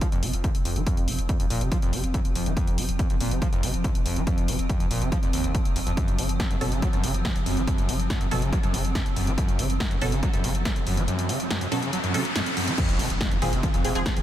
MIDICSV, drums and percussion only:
0, 0, Header, 1, 2, 480
1, 0, Start_track
1, 0, Tempo, 425532
1, 977, Time_signature, 4, 2, 24, 8
1, 16046, End_track
2, 0, Start_track
2, 0, Title_t, "Drums"
2, 16, Note_on_c, 9, 36, 117
2, 16, Note_on_c, 9, 42, 81
2, 129, Note_off_c, 9, 36, 0
2, 129, Note_off_c, 9, 42, 0
2, 138, Note_on_c, 9, 42, 52
2, 251, Note_off_c, 9, 42, 0
2, 256, Note_on_c, 9, 46, 102
2, 369, Note_off_c, 9, 46, 0
2, 378, Note_on_c, 9, 42, 56
2, 491, Note_off_c, 9, 42, 0
2, 496, Note_on_c, 9, 36, 122
2, 497, Note_on_c, 9, 42, 81
2, 609, Note_off_c, 9, 36, 0
2, 610, Note_off_c, 9, 42, 0
2, 618, Note_on_c, 9, 42, 56
2, 731, Note_off_c, 9, 42, 0
2, 736, Note_on_c, 9, 46, 92
2, 849, Note_off_c, 9, 46, 0
2, 858, Note_on_c, 9, 42, 55
2, 970, Note_off_c, 9, 42, 0
2, 976, Note_on_c, 9, 36, 124
2, 977, Note_on_c, 9, 42, 84
2, 1089, Note_off_c, 9, 36, 0
2, 1089, Note_off_c, 9, 42, 0
2, 1098, Note_on_c, 9, 42, 53
2, 1210, Note_off_c, 9, 42, 0
2, 1216, Note_on_c, 9, 46, 108
2, 1329, Note_off_c, 9, 46, 0
2, 1337, Note_on_c, 9, 42, 56
2, 1450, Note_off_c, 9, 42, 0
2, 1456, Note_on_c, 9, 36, 118
2, 1456, Note_on_c, 9, 42, 87
2, 1569, Note_off_c, 9, 36, 0
2, 1569, Note_off_c, 9, 42, 0
2, 1578, Note_on_c, 9, 42, 52
2, 1690, Note_off_c, 9, 42, 0
2, 1697, Note_on_c, 9, 46, 96
2, 1809, Note_off_c, 9, 46, 0
2, 1818, Note_on_c, 9, 42, 55
2, 1930, Note_off_c, 9, 42, 0
2, 1936, Note_on_c, 9, 36, 122
2, 1936, Note_on_c, 9, 42, 82
2, 2049, Note_off_c, 9, 36, 0
2, 2049, Note_off_c, 9, 42, 0
2, 2057, Note_on_c, 9, 42, 52
2, 2170, Note_off_c, 9, 42, 0
2, 2176, Note_on_c, 9, 46, 109
2, 2289, Note_off_c, 9, 46, 0
2, 2297, Note_on_c, 9, 42, 53
2, 2410, Note_off_c, 9, 42, 0
2, 2415, Note_on_c, 9, 36, 120
2, 2416, Note_on_c, 9, 42, 83
2, 2528, Note_off_c, 9, 36, 0
2, 2528, Note_off_c, 9, 42, 0
2, 2538, Note_on_c, 9, 42, 55
2, 2650, Note_off_c, 9, 42, 0
2, 2656, Note_on_c, 9, 46, 100
2, 2769, Note_off_c, 9, 46, 0
2, 2777, Note_on_c, 9, 42, 55
2, 2890, Note_off_c, 9, 42, 0
2, 2895, Note_on_c, 9, 36, 127
2, 2896, Note_on_c, 9, 42, 84
2, 3008, Note_off_c, 9, 36, 0
2, 3009, Note_off_c, 9, 42, 0
2, 3017, Note_on_c, 9, 42, 53
2, 3130, Note_off_c, 9, 42, 0
2, 3136, Note_on_c, 9, 46, 117
2, 3248, Note_off_c, 9, 46, 0
2, 3257, Note_on_c, 9, 42, 55
2, 3370, Note_off_c, 9, 42, 0
2, 3375, Note_on_c, 9, 36, 127
2, 3375, Note_on_c, 9, 42, 85
2, 3488, Note_off_c, 9, 36, 0
2, 3488, Note_off_c, 9, 42, 0
2, 3497, Note_on_c, 9, 42, 51
2, 3610, Note_off_c, 9, 42, 0
2, 3615, Note_on_c, 9, 46, 96
2, 3728, Note_off_c, 9, 46, 0
2, 3738, Note_on_c, 9, 42, 53
2, 3851, Note_off_c, 9, 42, 0
2, 3855, Note_on_c, 9, 36, 124
2, 3856, Note_on_c, 9, 42, 75
2, 3968, Note_off_c, 9, 36, 0
2, 3969, Note_off_c, 9, 42, 0
2, 3978, Note_on_c, 9, 42, 53
2, 4090, Note_off_c, 9, 42, 0
2, 4097, Note_on_c, 9, 46, 109
2, 4209, Note_off_c, 9, 46, 0
2, 4217, Note_on_c, 9, 42, 53
2, 4330, Note_off_c, 9, 42, 0
2, 4335, Note_on_c, 9, 36, 124
2, 4337, Note_on_c, 9, 42, 77
2, 4448, Note_off_c, 9, 36, 0
2, 4449, Note_off_c, 9, 42, 0
2, 4457, Note_on_c, 9, 42, 54
2, 4570, Note_off_c, 9, 42, 0
2, 4576, Note_on_c, 9, 46, 98
2, 4689, Note_off_c, 9, 46, 0
2, 4697, Note_on_c, 9, 42, 54
2, 4810, Note_off_c, 9, 42, 0
2, 4815, Note_on_c, 9, 36, 121
2, 4816, Note_on_c, 9, 42, 83
2, 4928, Note_off_c, 9, 36, 0
2, 4929, Note_off_c, 9, 42, 0
2, 4938, Note_on_c, 9, 42, 50
2, 5050, Note_off_c, 9, 42, 0
2, 5056, Note_on_c, 9, 46, 111
2, 5169, Note_off_c, 9, 46, 0
2, 5178, Note_on_c, 9, 42, 57
2, 5291, Note_off_c, 9, 42, 0
2, 5296, Note_on_c, 9, 36, 127
2, 5296, Note_on_c, 9, 42, 78
2, 5408, Note_off_c, 9, 36, 0
2, 5409, Note_off_c, 9, 42, 0
2, 5417, Note_on_c, 9, 42, 51
2, 5530, Note_off_c, 9, 42, 0
2, 5536, Note_on_c, 9, 46, 98
2, 5649, Note_off_c, 9, 46, 0
2, 5658, Note_on_c, 9, 42, 50
2, 5770, Note_off_c, 9, 42, 0
2, 5776, Note_on_c, 9, 36, 126
2, 5777, Note_on_c, 9, 42, 79
2, 5888, Note_off_c, 9, 36, 0
2, 5889, Note_off_c, 9, 42, 0
2, 5897, Note_on_c, 9, 42, 48
2, 6010, Note_off_c, 9, 42, 0
2, 6016, Note_on_c, 9, 46, 109
2, 6129, Note_off_c, 9, 46, 0
2, 6138, Note_on_c, 9, 42, 52
2, 6250, Note_off_c, 9, 42, 0
2, 6256, Note_on_c, 9, 36, 125
2, 6256, Note_on_c, 9, 42, 77
2, 6369, Note_off_c, 9, 36, 0
2, 6369, Note_off_c, 9, 42, 0
2, 6378, Note_on_c, 9, 42, 54
2, 6490, Note_off_c, 9, 42, 0
2, 6496, Note_on_c, 9, 46, 97
2, 6609, Note_off_c, 9, 46, 0
2, 6618, Note_on_c, 9, 42, 54
2, 6731, Note_off_c, 9, 42, 0
2, 6736, Note_on_c, 9, 36, 121
2, 6737, Note_on_c, 9, 42, 79
2, 6849, Note_off_c, 9, 36, 0
2, 6850, Note_off_c, 9, 42, 0
2, 6858, Note_on_c, 9, 42, 48
2, 6971, Note_off_c, 9, 42, 0
2, 6977, Note_on_c, 9, 46, 107
2, 7090, Note_off_c, 9, 46, 0
2, 7098, Note_on_c, 9, 42, 54
2, 7211, Note_off_c, 9, 42, 0
2, 7216, Note_on_c, 9, 36, 126
2, 7216, Note_on_c, 9, 38, 115
2, 7216, Note_on_c, 9, 42, 76
2, 7329, Note_off_c, 9, 36, 0
2, 7329, Note_off_c, 9, 38, 0
2, 7329, Note_off_c, 9, 42, 0
2, 7339, Note_on_c, 9, 42, 48
2, 7451, Note_off_c, 9, 42, 0
2, 7458, Note_on_c, 9, 46, 93
2, 7571, Note_off_c, 9, 46, 0
2, 7578, Note_on_c, 9, 42, 50
2, 7691, Note_off_c, 9, 42, 0
2, 7697, Note_on_c, 9, 36, 118
2, 7697, Note_on_c, 9, 42, 75
2, 7809, Note_off_c, 9, 36, 0
2, 7810, Note_off_c, 9, 42, 0
2, 7819, Note_on_c, 9, 42, 49
2, 7931, Note_off_c, 9, 42, 0
2, 7936, Note_on_c, 9, 46, 108
2, 8049, Note_off_c, 9, 46, 0
2, 8058, Note_on_c, 9, 42, 49
2, 8171, Note_off_c, 9, 42, 0
2, 8177, Note_on_c, 9, 36, 123
2, 8177, Note_on_c, 9, 38, 115
2, 8177, Note_on_c, 9, 42, 76
2, 8289, Note_off_c, 9, 38, 0
2, 8289, Note_off_c, 9, 42, 0
2, 8290, Note_off_c, 9, 36, 0
2, 8299, Note_on_c, 9, 42, 52
2, 8411, Note_off_c, 9, 42, 0
2, 8418, Note_on_c, 9, 46, 96
2, 8530, Note_off_c, 9, 46, 0
2, 8539, Note_on_c, 9, 42, 52
2, 8652, Note_off_c, 9, 42, 0
2, 8657, Note_on_c, 9, 36, 120
2, 8658, Note_on_c, 9, 42, 78
2, 8770, Note_off_c, 9, 36, 0
2, 8770, Note_off_c, 9, 42, 0
2, 8779, Note_on_c, 9, 42, 50
2, 8892, Note_off_c, 9, 42, 0
2, 8898, Note_on_c, 9, 46, 105
2, 9010, Note_off_c, 9, 46, 0
2, 9019, Note_on_c, 9, 42, 54
2, 9132, Note_off_c, 9, 42, 0
2, 9137, Note_on_c, 9, 36, 117
2, 9138, Note_on_c, 9, 38, 119
2, 9138, Note_on_c, 9, 42, 78
2, 9250, Note_off_c, 9, 36, 0
2, 9251, Note_off_c, 9, 38, 0
2, 9251, Note_off_c, 9, 42, 0
2, 9259, Note_on_c, 9, 42, 49
2, 9372, Note_off_c, 9, 42, 0
2, 9378, Note_on_c, 9, 46, 88
2, 9491, Note_off_c, 9, 46, 0
2, 9499, Note_on_c, 9, 42, 50
2, 9612, Note_off_c, 9, 42, 0
2, 9617, Note_on_c, 9, 36, 115
2, 9618, Note_on_c, 9, 42, 70
2, 9730, Note_off_c, 9, 36, 0
2, 9731, Note_off_c, 9, 42, 0
2, 9739, Note_on_c, 9, 42, 46
2, 9852, Note_off_c, 9, 42, 0
2, 9858, Note_on_c, 9, 46, 101
2, 9971, Note_off_c, 9, 46, 0
2, 9979, Note_on_c, 9, 42, 50
2, 10092, Note_off_c, 9, 42, 0
2, 10097, Note_on_c, 9, 36, 117
2, 10098, Note_on_c, 9, 38, 119
2, 10098, Note_on_c, 9, 42, 76
2, 10210, Note_off_c, 9, 36, 0
2, 10211, Note_off_c, 9, 38, 0
2, 10211, Note_off_c, 9, 42, 0
2, 10219, Note_on_c, 9, 42, 53
2, 10332, Note_off_c, 9, 42, 0
2, 10338, Note_on_c, 9, 46, 89
2, 10450, Note_off_c, 9, 46, 0
2, 10459, Note_on_c, 9, 42, 50
2, 10572, Note_off_c, 9, 42, 0
2, 10577, Note_on_c, 9, 36, 109
2, 10578, Note_on_c, 9, 42, 81
2, 10690, Note_off_c, 9, 36, 0
2, 10691, Note_off_c, 9, 42, 0
2, 10699, Note_on_c, 9, 42, 50
2, 10812, Note_off_c, 9, 42, 0
2, 10818, Note_on_c, 9, 46, 106
2, 10931, Note_off_c, 9, 46, 0
2, 10939, Note_on_c, 9, 42, 54
2, 11052, Note_off_c, 9, 42, 0
2, 11057, Note_on_c, 9, 36, 122
2, 11057, Note_on_c, 9, 38, 127
2, 11057, Note_on_c, 9, 42, 81
2, 11170, Note_off_c, 9, 36, 0
2, 11170, Note_off_c, 9, 38, 0
2, 11170, Note_off_c, 9, 42, 0
2, 11178, Note_on_c, 9, 42, 50
2, 11291, Note_off_c, 9, 42, 0
2, 11297, Note_on_c, 9, 46, 88
2, 11410, Note_off_c, 9, 46, 0
2, 11418, Note_on_c, 9, 42, 53
2, 11531, Note_off_c, 9, 42, 0
2, 11537, Note_on_c, 9, 36, 110
2, 11537, Note_on_c, 9, 42, 78
2, 11649, Note_off_c, 9, 42, 0
2, 11650, Note_off_c, 9, 36, 0
2, 11658, Note_on_c, 9, 42, 49
2, 11771, Note_off_c, 9, 42, 0
2, 11777, Note_on_c, 9, 46, 108
2, 11889, Note_off_c, 9, 46, 0
2, 11898, Note_on_c, 9, 42, 53
2, 12011, Note_off_c, 9, 42, 0
2, 12017, Note_on_c, 9, 36, 119
2, 12017, Note_on_c, 9, 38, 121
2, 12017, Note_on_c, 9, 42, 80
2, 12130, Note_off_c, 9, 36, 0
2, 12130, Note_off_c, 9, 38, 0
2, 12130, Note_off_c, 9, 42, 0
2, 12138, Note_on_c, 9, 42, 52
2, 12251, Note_off_c, 9, 42, 0
2, 12257, Note_on_c, 9, 46, 84
2, 12370, Note_off_c, 9, 46, 0
2, 12378, Note_on_c, 9, 42, 50
2, 12491, Note_off_c, 9, 42, 0
2, 12498, Note_on_c, 9, 42, 84
2, 12611, Note_off_c, 9, 42, 0
2, 12619, Note_on_c, 9, 42, 54
2, 12732, Note_off_c, 9, 42, 0
2, 12737, Note_on_c, 9, 46, 105
2, 12850, Note_off_c, 9, 46, 0
2, 12858, Note_on_c, 9, 42, 56
2, 12971, Note_off_c, 9, 42, 0
2, 12978, Note_on_c, 9, 38, 127
2, 12978, Note_on_c, 9, 42, 83
2, 13091, Note_off_c, 9, 38, 0
2, 13091, Note_off_c, 9, 42, 0
2, 13099, Note_on_c, 9, 42, 53
2, 13212, Note_off_c, 9, 42, 0
2, 13218, Note_on_c, 9, 46, 86
2, 13331, Note_off_c, 9, 46, 0
2, 13338, Note_on_c, 9, 42, 54
2, 13451, Note_off_c, 9, 42, 0
2, 13457, Note_on_c, 9, 42, 78
2, 13570, Note_off_c, 9, 42, 0
2, 13578, Note_on_c, 9, 42, 52
2, 13691, Note_off_c, 9, 42, 0
2, 13698, Note_on_c, 9, 46, 109
2, 13810, Note_off_c, 9, 46, 0
2, 13818, Note_on_c, 9, 42, 53
2, 13931, Note_off_c, 9, 42, 0
2, 13937, Note_on_c, 9, 38, 122
2, 13937, Note_on_c, 9, 42, 81
2, 14050, Note_off_c, 9, 38, 0
2, 14050, Note_off_c, 9, 42, 0
2, 14059, Note_on_c, 9, 42, 54
2, 14171, Note_off_c, 9, 42, 0
2, 14177, Note_on_c, 9, 46, 89
2, 14290, Note_off_c, 9, 46, 0
2, 14299, Note_on_c, 9, 42, 57
2, 14412, Note_off_c, 9, 42, 0
2, 14417, Note_on_c, 9, 36, 125
2, 14417, Note_on_c, 9, 42, 85
2, 14417, Note_on_c, 9, 49, 107
2, 14417, Note_on_c, 9, 51, 58
2, 14530, Note_off_c, 9, 36, 0
2, 14530, Note_off_c, 9, 42, 0
2, 14530, Note_off_c, 9, 49, 0
2, 14530, Note_off_c, 9, 51, 0
2, 14539, Note_on_c, 9, 42, 54
2, 14652, Note_off_c, 9, 42, 0
2, 14657, Note_on_c, 9, 46, 110
2, 14657, Note_on_c, 9, 51, 82
2, 14770, Note_off_c, 9, 46, 0
2, 14770, Note_off_c, 9, 51, 0
2, 14778, Note_on_c, 9, 42, 58
2, 14891, Note_off_c, 9, 42, 0
2, 14897, Note_on_c, 9, 36, 127
2, 14897, Note_on_c, 9, 38, 127
2, 14897, Note_on_c, 9, 42, 84
2, 15010, Note_off_c, 9, 36, 0
2, 15010, Note_off_c, 9, 38, 0
2, 15010, Note_off_c, 9, 42, 0
2, 15019, Note_on_c, 9, 42, 54
2, 15132, Note_off_c, 9, 42, 0
2, 15137, Note_on_c, 9, 46, 93
2, 15137, Note_on_c, 9, 47, 84
2, 15137, Note_on_c, 9, 51, 78
2, 15250, Note_off_c, 9, 46, 0
2, 15250, Note_off_c, 9, 47, 0
2, 15250, Note_off_c, 9, 51, 0
2, 15259, Note_on_c, 9, 42, 54
2, 15372, Note_off_c, 9, 42, 0
2, 15377, Note_on_c, 9, 36, 118
2, 15378, Note_on_c, 9, 42, 82
2, 15378, Note_on_c, 9, 47, 89
2, 15378, Note_on_c, 9, 51, 55
2, 15489, Note_off_c, 9, 36, 0
2, 15491, Note_off_c, 9, 42, 0
2, 15491, Note_off_c, 9, 47, 0
2, 15491, Note_off_c, 9, 51, 0
2, 15499, Note_on_c, 9, 42, 54
2, 15612, Note_off_c, 9, 42, 0
2, 15618, Note_on_c, 9, 46, 109
2, 15618, Note_on_c, 9, 51, 81
2, 15731, Note_off_c, 9, 46, 0
2, 15731, Note_off_c, 9, 51, 0
2, 15739, Note_on_c, 9, 42, 56
2, 15852, Note_off_c, 9, 42, 0
2, 15857, Note_on_c, 9, 36, 122
2, 15858, Note_on_c, 9, 38, 125
2, 15858, Note_on_c, 9, 42, 82
2, 15858, Note_on_c, 9, 51, 57
2, 15970, Note_off_c, 9, 36, 0
2, 15971, Note_off_c, 9, 38, 0
2, 15971, Note_off_c, 9, 42, 0
2, 15971, Note_off_c, 9, 51, 0
2, 15979, Note_on_c, 9, 42, 54
2, 15979, Note_on_c, 9, 47, 90
2, 16046, Note_off_c, 9, 42, 0
2, 16046, Note_off_c, 9, 47, 0
2, 16046, End_track
0, 0, End_of_file